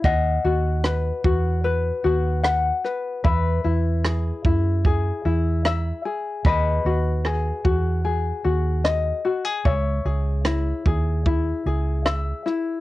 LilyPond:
<<
  \new Staff \with { instrumentName = "Ukulele" } { \time 4/4 \key cis \minor \tempo 4 = 75 <dis'' fis''>8 fis'8 b'8 fis'8 b'8 fis'8 fis''8 b'8 | <b' e''>8 e'8 gis'8 e'8 gis'8 e'8 e''8 gis'8 | <b' dis''>8 fis'8 gis'8 fis'8 gis'8 fis'8 dis''8 fis'16 gis'16 | <cis'' e''>8 gis'8 e'8 gis'8 e'8 gis'8 e''8 e'8 | }
  \new Staff \with { instrumentName = "Fingered electric bass" } { \clef bass \time 4/4 \key cis \minor dis,8 dis,4 e,4 dis,4 r8 | e,8 e,4 fis,4 e,4 r8 | dis,8 dis,4 e,4 dis,4 r8 | cis,8 cis,4 dis,4 cis,4 r8 | }
  \new DrumStaff \with { instrumentName = "Drums" } \drummode { \time 4/4 bd4 ss8 bd8 r4 ss8 ss8 | bd4 ss8 bd8 bd4 ss4 | bd4 ss8 bd8 r4 ss4 | bd4 ss8 bd8 bd4 ss8 ss8 | }
>>